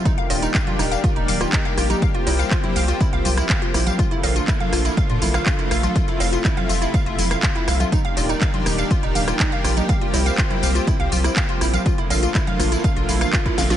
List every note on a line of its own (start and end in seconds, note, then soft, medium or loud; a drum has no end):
0.05 2.00 D#3 medium
0.05 3.95 G3 medium
0.05 3.95 A#3 medium
0.05 2.00 D4 medium
0.05 0.10 D#4 medium
0.05 3.95 G4 medium
0.05 kick loud
0.05 closed hi-hat medium
0.05 tambourine soft
0.18 0.23 F5 medium
0.18 closed hi-hat soft
0.30 0.47 D#1 loud
0.30 0.38 F4 medium
0.30 open hi-hat loud
0.30 tambourine medium
0.30 cowbell loud
0.42 0.47 D#4 medium
0.42 closed hi-hat medium
0.42 tambourine soft
0.54 0.59 F5 medium
0.54 kick loud
0.54 clap loud
0.54 closed hi-hat medium
0.54 tambourine soft
0.67 0.75 F4 medium
0.67 closed hi-hat soft
0.67 high conga loud
0.79 0.96 D#1 loud
0.79 0.84 D#4 medium
0.79 cross-stick medium
0.79 open hi-hat medium
0.79 tambourine medium
0.91 0.96 F5 medium
0.91 closed hi-hat medium
0.91 tambourine soft
1.04 1.12 F4 medium
1.04 kick loud
1.04 closed hi-hat medium
1.04 tambourine soft
1.16 1.24 D#1 loud
1.16 1.21 D#4 medium
1.16 closed hi-hat soft
1.28 1.45 D#1 loud
1.28 1.33 F5 medium
1.28 open hi-hat loud
1.28 tambourine medium
1.28 high conga medium
1.41 1.49 F4 medium
1.41 cross-stick medium
1.41 closed hi-hat medium
1.41 tambourine soft
1.53 1.58 D#4 medium
1.53 kick loud
1.53 clap loud
1.53 closed hi-hat medium
1.53 tambourine soft
1.65 1.70 F5 medium
1.65 closed hi-hat soft
1.78 1.94 A#1 medium
1.78 1.86 F4 medium
1.78 cross-stick medium
1.78 open hi-hat loud
1.78 tambourine medium
1.90 1.95 D#4 medium
1.90 closed hi-hat medium
1.90 tambourine soft
1.90 high conga loud
2.02 7.88 F3 medium
2.02 3.97 C4 medium
2.02 2.07 F5 medium
2.02 kick loud
2.02 closed hi-hat medium
2.02 tambourine soft
2.14 2.22 F4 medium
2.14 closed hi-hat soft
2.27 2.43 C2 loud
2.27 2.31 E4 medium
2.27 open hi-hat loud
2.27 tambourine medium
2.27 cowbell loud
2.39 2.44 F5 medium
2.39 tambourine soft
2.51 2.59 F4 medium
2.51 kick loud
2.51 clap loud
2.51 closed hi-hat medium
2.51 tambourine soft
2.64 2.68 E4 medium
2.64 closed hi-hat soft
2.64 high conga loud
2.76 2.93 C2 loud
2.76 2.81 F5 medium
2.76 open hi-hat loud
2.76 tambourine medium
2.88 2.96 F4 medium
2.88 closed hi-hat soft
2.88 tambourine soft
3.00 3.05 E4 medium
3.00 kick loud
3.00 closed hi-hat soft
3.00 tambourine soft
3.13 3.21 C2 loud
3.13 3.18 F5 medium
3.13 closed hi-hat soft
3.25 3.42 C2 loud
3.25 3.33 F4 medium
3.25 open hi-hat loud
3.25 tambourine medium
3.25 high conga medium
3.37 3.42 E4 medium
3.37 cross-stick medium
3.37 closed hi-hat medium
3.37 tambourine soft
3.49 3.54 F5 medium
3.49 kick loud
3.49 clap loud
3.49 closed hi-hat medium
3.62 3.70 F4 medium
3.62 closed hi-hat soft
3.74 3.91 A#1 medium
3.74 3.79 E4 medium
3.74 cross-stick medium
3.74 open hi-hat loud
3.74 tambourine medium
3.87 3.91 F5 medium
3.87 closed hi-hat medium
3.87 tambourine soft
3.87 high conga loud
3.99 5.94 D3 medium
3.99 7.88 A3 medium
3.99 5.94 A#3 medium
3.99 4.07 F4 medium
3.99 7.88 F4 medium
3.99 kick loud
3.99 closed hi-hat medium
3.99 tambourine soft
4.11 4.16 E4 medium
4.11 closed hi-hat soft
4.23 4.40 A#1 loud
4.23 4.28 F5 medium
4.23 open hi-hat loud
4.23 tambourine medium
4.23 cowbell loud
4.36 4.44 F4 medium
4.36 closed hi-hat soft
4.36 tambourine soft
4.48 4.53 E4 medium
4.48 kick loud
4.48 clap loud
4.48 closed hi-hat medium
4.48 tambourine soft
4.60 4.65 F5 medium
4.60 closed hi-hat soft
4.60 high conga medium
4.73 4.89 A#1 loud
4.73 4.81 F4 medium
4.73 cross-stick medium
4.73 open hi-hat loud
4.73 tambourine medium
4.85 4.90 E4 medium
4.85 closed hi-hat medium
4.85 tambourine soft
4.97 5.02 F5 medium
4.97 kick loud
4.97 closed hi-hat soft
4.97 tambourine soft
5.10 5.18 A#2 loud
5.10 5.18 F4 medium
5.10 closed hi-hat soft
5.22 5.39 A#1 medium
5.22 5.27 E4 medium
5.22 open hi-hat loud
5.22 tambourine medium
5.22 high conga medium
5.34 5.39 F5 medium
5.34 cross-stick medium
5.34 closed hi-hat medium
5.34 tambourine soft
5.46 5.54 F4 medium
5.46 kick loud
5.46 clap loud
5.46 closed hi-hat medium
5.46 tambourine soft
5.59 5.64 E4 medium
5.59 closed hi-hat soft
5.71 5.88 A#1 medium
5.71 5.76 F5 medium
5.71 cross-stick medium
5.71 open hi-hat medium
5.71 tambourine medium
5.83 5.91 F4 medium
5.83 closed hi-hat soft
5.83 tambourine soft
5.83 high conga medium
5.96 7.90 C3 medium
5.96 7.90 E4 medium
5.96 6.04 F4 medium
5.96 kick loud
5.96 closed hi-hat medium
5.96 tambourine soft
6.08 6.13 E4 medium
6.08 closed hi-hat soft
6.20 6.37 F1 loud
6.20 6.25 F5 medium
6.20 open hi-hat loud
6.20 tambourine medium
6.20 cowbell medium
6.33 6.40 F4 medium
6.33 closed hi-hat soft
6.33 tambourine soft
6.44 6.50 E4 medium
6.44 kick loud
6.44 clap loud
6.44 closed hi-hat medium
6.44 tambourine soft
6.57 6.62 F5 medium
6.57 closed hi-hat soft
6.57 high conga medium
6.69 6.86 F1 loud
6.69 6.77 F4 medium
6.69 open hi-hat medium
6.69 tambourine medium
6.82 6.86 E4 medium
6.82 closed hi-hat medium
6.82 tambourine soft
6.94 6.99 F5 medium
6.94 kick loud
6.94 closed hi-hat medium
6.94 tambourine soft
7.06 7.15 F1 medium
7.06 7.14 F4 medium
7.06 closed hi-hat soft
7.19 7.35 F1 loud
7.19 7.23 E4 medium
7.19 open hi-hat loud
7.19 tambourine medium
7.19 high conga medium
7.31 7.36 F5 medium
7.31 cross-stick medium
7.31 closed hi-hat soft
7.31 tambourine soft
7.43 7.51 F4 medium
7.43 kick loud
7.43 clap loud
7.43 closed hi-hat medium
7.43 tambourine soft
7.55 7.60 E4 medium
7.55 closed hi-hat soft
7.68 7.84 C2 loud
7.68 7.73 F5 medium
7.68 cross-stick medium
7.68 open hi-hat medium
7.68 tambourine medium
7.80 7.88 F4 medium
7.80 closed hi-hat soft
7.80 tambourine soft
7.80 high conga medium
7.92 9.87 D#3 medium
7.92 11.82 G3 medium
7.92 11.82 A#3 medium
7.92 9.87 D4 medium
7.92 7.97 D#4 medium
7.92 11.82 G4 loud
7.92 kick loud
7.92 closed hi-hat medium
7.92 tambourine soft
8.05 8.09 F5 medium
8.05 closed hi-hat soft
8.17 8.34 D#1 loud
8.17 8.25 F4 medium
8.17 open hi-hat loud
8.17 tambourine medium
8.17 cowbell medium
8.29 8.34 D#4 medium
8.29 closed hi-hat medium
8.29 tambourine soft
8.41 8.46 F5 medium
8.41 kick loud
8.41 clap loud
8.41 closed hi-hat medium
8.41 tambourine soft
8.54 8.62 F4 medium
8.54 closed hi-hat soft
8.54 high conga medium
8.66 8.83 D#1 loud
8.66 8.71 D#4 medium
8.66 cross-stick medium
8.66 open hi-hat medium
8.66 tambourine medium
8.78 8.83 F5 medium
8.78 closed hi-hat medium
8.78 tambourine soft
8.91 8.99 F4 medium
8.91 kick loud
8.91 closed hi-hat medium
8.91 tambourine soft
9.03 9.11 D#1 loud
9.03 9.08 D#4 medium
9.03 closed hi-hat soft
9.15 9.32 D#1 loud
9.15 9.20 F5 medium
9.15 open hi-hat loud
9.15 tambourine medium
9.15 high conga medium
9.28 9.36 F4 medium
9.28 cross-stick medium
9.28 closed hi-hat medium
9.28 tambourine soft
9.39 9.45 D#4 medium
9.39 kick loud
9.39 clap loud
9.39 closed hi-hat medium
9.39 tambourine soft
9.52 9.57 F5 medium
9.52 closed hi-hat soft
9.64 9.81 A#1 medium
9.64 9.72 F4 medium
9.64 cross-stick medium
9.64 open hi-hat medium
9.64 tambourine medium
9.77 9.82 D#4 medium
9.77 closed hi-hat soft
9.77 tambourine soft
9.77 high conga medium
9.89 13.77 F3 medium
9.89 11.84 C4 medium
9.89 9.94 F5 medium
9.89 kick loud
9.89 closed hi-hat medium
9.89 tambourine soft
10.01 10.09 F4 medium
10.01 closed hi-hat soft
10.14 10.30 C2 loud
10.14 10.18 E4 medium
10.14 open hi-hat loud
10.14 tambourine medium
10.14 cowbell medium
10.26 10.31 F5 medium
10.26 closed hi-hat medium
10.26 tambourine soft
10.38 10.46 F4 medium
10.38 kick loud
10.38 clap loud
10.38 closed hi-hat medium
10.38 tambourine soft
10.51 10.55 E4 medium
10.51 closed hi-hat soft
10.51 high conga medium
10.63 10.80 C2 loud
10.63 10.68 F5 medium
10.63 open hi-hat medium
10.63 tambourine medium
10.75 10.83 F4 medium
10.75 closed hi-hat medium
10.75 tambourine soft
10.87 10.92 E4 medium
10.87 kick loud
10.87 closed hi-hat medium
10.87 tambourine soft
11.00 11.08 C2 medium
11.00 11.04 F5 medium
11.00 closed hi-hat soft
11.12 11.29 C2 loud
11.12 11.20 F4 medium
11.12 open hi-hat loud
11.12 tambourine medium
11.12 high conga medium
11.24 11.29 E4 medium
11.24 cross-stick medium
11.24 closed hi-hat medium
11.24 tambourine soft
11.36 11.41 F5 medium
11.36 kick loud
11.36 clap loud
11.36 closed hi-hat medium
11.49 11.57 F4 medium
11.49 closed hi-hat soft
11.61 11.78 A#1 loud
11.61 11.66 E4 medium
11.61 cross-stick medium
11.61 open hi-hat medium
11.61 tambourine medium
11.74 11.78 F5 medium
11.74 closed hi-hat medium
11.74 tambourine soft
11.74 high conga medium
11.86 13.77 D3 medium
11.86 13.77 A3 medium
11.86 13.77 A#3 medium
11.86 13.77 F4 loud
11.86 11.94 F4 medium
11.86 kick loud
11.86 closed hi-hat medium
11.86 tambourine soft
11.98 12.03 E4 medium
11.98 closed hi-hat soft
12.10 12.27 A#1 loud
12.10 12.15 F5 medium
12.10 open hi-hat loud
12.10 tambourine medium
12.10 cowbell medium
12.23 12.31 F4 medium
12.23 closed hi-hat medium
12.23 tambourine soft
12.35 12.40 E4 medium
12.35 kick loud
12.35 clap loud
12.35 closed hi-hat medium
12.35 tambourine soft
12.47 12.52 F5 medium
12.47 closed hi-hat soft
12.47 high conga medium
12.60 12.76 A#1 loud
12.60 12.68 F4 medium
12.60 cross-stick medium
12.60 open hi-hat medium
12.60 tambourine medium
12.72 12.77 E4 medium
12.72 closed hi-hat medium
12.72 tambourine soft
12.84 12.89 F5 medium
12.84 kick loud
12.84 closed hi-hat medium
12.84 tambourine soft
12.96 13.05 A#1 loud
12.96 13.04 F4 medium
12.96 closed hi-hat soft
13.09 13.25 A#1 medium
13.09 13.14 E4 medium
13.09 open hi-hat loud
13.09 tambourine medium
13.09 high conga medium
13.21 13.26 F5 medium
13.21 cross-stick medium
13.21 closed hi-hat medium
13.21 tambourine soft
13.33 13.41 F4 medium
13.33 kick loud
13.33 clap loud
13.33 closed hi-hat medium
13.33 tambourine soft
13.46 13.50 E4 medium
13.46 kick medium
13.46 closed hi-hat soft
13.58 13.75 A#1 medium
13.58 13.63 F5 medium
13.58 snare medium
13.58 open hi-hat medium
13.58 tambourine medium
13.70 13.77 F4 medium
13.70 snare medium
13.70 closed hi-hat medium
13.70 tambourine soft
13.70 high conga loud